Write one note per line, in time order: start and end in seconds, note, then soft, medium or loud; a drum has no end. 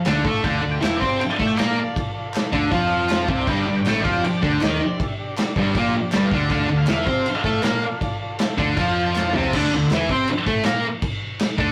0.05 0.24 D2 medium
0.05 0.24 D3 medium
0.05 0.25 D4 loud
0.05 0.22 F4 medium
0.05 0.23 A4 medium
0.05 snare loud
0.05 clap loud
0.05 crash medium
0.09 0.24 D5 medium
0.23 0.43 A2 medium
0.23 0.43 A3 medium
0.23 0.41 F4 medium
0.23 0.41 A4 medium
0.23 0.44 A4 loud
0.23 0.42 D5 medium
0.23 kick loud
0.43 0.62 D2 medium
0.43 0.61 D3 medium
0.43 0.62 D4 loud
0.43 0.60 F4 medium
0.43 0.60 A4 medium
0.43 0.61 F5 loud
0.43 0.56 G5 medium
0.43 kick loud
0.43 crash medium
0.57 0.78 F4 medium
0.57 0.69 D5 medium
0.62 0.81 D2 medium
0.62 0.78 D3 medium
0.62 0.79 A4 medium
0.62 0.79 D5 medium
0.71 0.83 G5 loud
0.79 1.00 E2 loud
0.79 1.00 E3 medium
0.79 1.00 E4 loud
0.79 0.97 F4 medium
0.79 0.98 A4 medium
0.79 clap loud
0.79 crash medium
0.84 0.99 F5 medium
0.84 0.95 G5 medium
0.84 snare loud
0.96 1.18 C4 loud
0.96 1.08 D5 medium
1.00 1.19 C3 medium
1.00 1.18 F4 medium
1.00 1.18 A4 medium
1.00 1.19 C5 loud
1.00 kick loud
1.05 1.19 D5 medium
1.05 1.20 G5 loud
1.19 1.36 F4 loud
1.19 1.37 A4 medium
1.19 1.37 E5 loud
1.19 1.33 G5 loud
1.19 muted distorted electric guitar stroke medium
1.19 muted fingered electric bass stroke soft
1.19 crash medium
1.32 1.45 D5 medium
1.39 1.57 A2 loud
1.39 1.57 A3 loud
1.39 1.56 F4 medium
1.39 1.58 A4 loud
1.39 1.57 A4 medium
1.39 kick loud
1.44 1.58 D5 medium
1.44 1.58 G5 medium
1.57 1.77 A#2 loud
1.57 1.76 A#3 medium
1.57 1.74 F4 medium
1.57 1.76 A4 medium
1.57 1.77 A#4 loud
1.57 1.94 D5 loud
1.57 1.76 D5 medium
1.57 snare loud
1.57 clap loud
1.57 crash medium
1.78 1.92 F4 medium
1.78 1.94 A4 medium
1.78 1.95 F5 medium
1.93 2.11 F4 loud
1.93 2.12 A4 medium
1.93 2.12 D5 loud
1.93 kick loud
1.93 crash medium
2.13 2.27 F4 medium
2.13 2.29 A4 medium
2.13 2.29 D5 medium
2.29 2.48 F4 medium
2.29 2.48 A4 medium
2.29 2.49 D5 medium
2.34 snare loud
2.34 clap loud
2.34 crash medium
2.50 2.71 D2 medium
2.50 2.71 D3 medium
2.50 2.71 D4 medium
2.50 2.65 F4 medium
2.50 2.65 A4 medium
2.50 2.66 D5 loud
2.50 kick loud
2.66 2.84 F4 loud
2.66 2.84 A4 loud
2.66 2.86 D5 loud
2.71 3.25 F2 medium
2.71 3.28 F3 loud
2.71 3.28 F4 medium
2.71 kick loud
2.71 crash medium
2.85 3.04 F4 medium
2.85 3.04 A4 medium
2.85 3.06 D5 medium
2.85 3.06 A5 medium
3.05 3.21 F4 medium
3.05 3.21 A4 medium
3.05 3.25 C5 medium
3.05 3.25 G5 medium
3.09 snare loud
3.09 clap medium
3.09 crash medium
3.22 3.42 F4 medium
3.22 3.42 A4 medium
3.22 3.40 D5 loud
3.22 3.43 F5 medium
3.28 3.46 C2 medium
3.28 3.47 C3 medium
3.28 3.48 C4 loud
3.28 kick loud
3.41 3.60 D4 loud
3.41 3.61 G4 medium
3.41 3.61 D5 loud
3.47 3.65 G1 medium
3.47 3.66 G2 loud
3.47 3.67 G3 medium
3.47 3.60 G5 loud
3.47 kick loud
3.47 crash medium
3.62 3.78 D4 medium
3.62 3.81 G4 medium
3.62 3.74 D5 loud
3.62 3.81 D5 medium
3.67 3.85 G1 medium
3.67 3.82 G2 medium
3.76 3.99 D4 medium
3.76 3.86 G5 loud
3.82 3.98 G4 medium
3.82 3.98 D5 medium
3.82 clap medium
3.82 crash medium
3.86 4.04 A1 loud
3.86 4.02 A2 medium
3.86 4.04 A3 medium
3.86 3.99 G5 medium
3.86 snare loud
3.99 4.22 F3 medium
3.99 4.18 D4 medium
3.99 4.18 G4 medium
3.99 4.17 D5 medium
3.99 4.12 D5 medium
4.05 4.23 F2 medium
4.05 4.23 F4 loud
4.05 kick loud
4.11 4.23 G5 medium
4.18 4.37 D4 medium
4.18 4.37 G4 medium
4.18 4.37 D5 loud
4.24 4.36 G5 medium
4.24 muted distorted electric guitar stroke medium
4.24 muted fingered electric bass stroke soft
4.24 crash medium
4.37 4.57 D4 medium
4.37 4.57 G4 medium
4.37 4.58 A4 medium
4.37 4.49 D5 loud
4.42 4.61 D2 loud
4.42 4.60 D3 medium
4.42 4.61 D4 loud
4.42 kick loud
4.52 4.63 G5 medium
4.59 4.79 D#2 loud
4.59 4.79 D#3 medium
4.59 4.76 D4 medium
4.59 4.80 D#4 loud
4.59 4.78 G4 medium
4.59 4.77 D5 medium
4.59 clap loud
4.59 crash medium
4.64 5.00 D5 medium
4.64 snare loud
4.78 4.95 D4 medium
4.78 4.95 G4 medium
4.78 4.97 C5 medium
4.96 5.14 D4 loud
4.96 5.14 G4 medium
4.96 5.15 E5 loud
4.96 kick loud
5.00 crash medium
5.18 5.35 D4 medium
5.18 5.35 G4 medium
5.18 5.36 D5 medium
5.37 5.53 D4 medium
5.37 5.54 G4 medium
5.37 5.53 D5 loud
5.37 snare loud
5.37 clap loud
5.37 crash medium
5.54 5.74 G1 medium
5.54 5.75 G2 loud
5.54 5.71 D4 medium
5.54 5.72 G4 medium
5.54 5.72 D5 loud
5.54 kick loud
5.59 5.76 G3 loud
5.75 5.93 A#1 loud
5.75 5.94 A#2 medium
5.75 5.94 A#3 loud
5.75 5.91 D4 loud
5.75 5.92 G4 loud
5.75 5.92 D5 loud
5.75 kick loud
5.75 crash medium
5.94 6.10 D4 medium
5.94 6.11 G4 medium
5.94 6.11 D5 loud
5.94 muted fingered electric bass stroke soft
5.94 muted distorted electric guitar stroke medium
6.12 6.31 G1 loud
6.12 6.31 G2 loud
6.12 6.32 G3 loud
6.12 6.29 D4 medium
6.12 6.29 G4 medium
6.12 6.25 A5 medium
6.12 snare loud
6.12 clap loud
6.12 crash medium
6.17 6.31 D5 medium
6.27 6.38 F5 loud
6.31 6.49 D2 medium
6.31 6.49 D3 loud
6.31 6.50 D4 loud
6.31 6.50 D4 medium
6.31 6.49 G4 medium
6.31 6.50 D5 medium
6.31 kick loud
6.40 6.51 A5 medium
6.50 6.68 D2 medium
6.50 6.68 D3 medium
6.50 6.69 D4 loud
6.50 6.68 F4 medium
6.50 6.63 F5 medium
6.50 kick loud
6.50 crash medium
6.54 6.69 A4 medium
6.54 6.69 D5 loud
6.64 6.76 A5 loud
6.69 6.88 D2 medium
6.69 6.84 D3 medium
6.69 6.87 F4 medium
6.73 6.88 A4 medium
6.73 6.88 D5 medium
6.73 6.88 F5 loud
6.87 7.06 E2 loud
6.87 7.06 E3 medium
6.87 7.07 E4 medium
6.87 7.06 F4 medium
6.87 7.06 A4 medium
6.87 7.99 F5 loud
6.87 snare loud
6.87 clap loud
6.87 crash medium
6.92 7.07 D5 medium
7.06 7.25 C3 loud
7.06 7.25 C4 medium
7.06 7.25 C5 loud
7.06 7.25 D5 medium
7.06 kick loud
7.10 7.25 F4 medium
7.10 7.25 A4 medium
7.25 7.44 F4 loud
7.25 7.43 A4 medium
7.25 muted distorted electric guitar stroke medium
7.25 muted fingered electric bass stroke soft
7.25 crash medium
7.29 7.44 E5 loud
7.44 7.62 A2 loud
7.44 7.62 A3 medium
7.44 7.62 F4 medium
7.44 7.63 A4 loud
7.44 7.62 A4 medium
7.44 kick loud
7.49 7.63 D5 medium
7.63 7.81 A#2 loud
7.63 7.82 A#3 medium
7.63 7.80 F4 medium
7.63 7.81 A4 medium
7.63 7.82 A#4 loud
7.63 snare loud
7.63 clap loud
7.63 crash medium
7.67 7.82 D5 loud
7.81 7.98 F4 medium
7.81 7.99 A4 medium
7.81 7.99 D5 loud
8.00 8.17 F4 loud
8.00 8.18 A4 loud
8.00 8.18 D5 loud
8.00 kick loud
8.00 crash medium
8.20 8.36 F4 medium
8.20 8.38 A4 medium
8.20 8.38 D5 medium
8.37 8.55 F4 loud
8.37 8.56 A4 medium
8.37 8.56 E5 medium
8.37 snare loud
8.37 clap loud
8.37 crash medium
8.57 8.76 D2 loud
8.57 8.76 D3 loud
8.57 8.77 D4 medium
8.57 8.75 F4 medium
8.57 8.75 A4 medium
8.57 8.76 D5 loud
8.57 kick loud
8.77 9.30 F2 medium
8.77 9.33 F3 loud
8.77 9.34 F4 loud
8.77 8.95 F4 medium
8.77 8.95 A4 medium
8.77 8.95 D5 loud
8.77 8.92 A5 loud
8.77 kick loud
8.77 crash medium
8.92 9.03 G5 loud
9.00 9.15 F4 medium
9.00 9.15 A4 medium
9.00 9.15 D5 medium
9.00 9.15 A5 loud
9.16 9.33 F4 medium
9.16 9.33 A4 medium
9.16 9.34 D5 medium
9.16 9.29 A5 medium
9.16 snare medium
9.16 clap loud
9.31 9.53 C3 loud
9.31 9.54 A5 loud
9.31 floor tom loud
9.35 9.52 C2 loud
9.35 9.53 C4 loud
9.35 9.51 F4 medium
9.35 9.52 A4 medium
9.35 9.52 F5 medium
9.53 9.71 D2 loud
9.53 9.72 D3 medium
9.53 9.73 D4 loud
9.53 kick loud
9.53 crash loud
9.53 crash medium
9.72 9.89 D2 medium
9.72 9.89 D3 medium
9.90 10.08 E2 loud
9.90 10.10 E3 medium
9.90 snare loud
9.90 clap medium
9.90 crash medium
9.95 10.11 E4 loud
10.09 10.27 C3 medium
10.09 10.28 C4 medium
10.09 10.29 C5 loud
10.09 kick loud
10.28 muted fingered electric bass stroke soft
10.28 muted distorted electric guitar stroke medium
10.28 crash medium
10.47 10.65 A2 loud
10.47 10.64 A3 medium
10.47 10.65 A4 medium
10.47 kick loud
10.63 10.83 A#2 loud
10.63 10.84 A#3 loud
10.63 10.84 A#4 loud
10.63 snare loud
10.63 clap medium
10.63 crash medium
11.02 kick loud
11.02 crash medium
11.39 snare loud
11.39 clap medium
11.39 crash medium
11.58 11.72 D2 loud
11.58 11.72 D3 medium
11.58 11.72 D4 loud
11.58 kick loud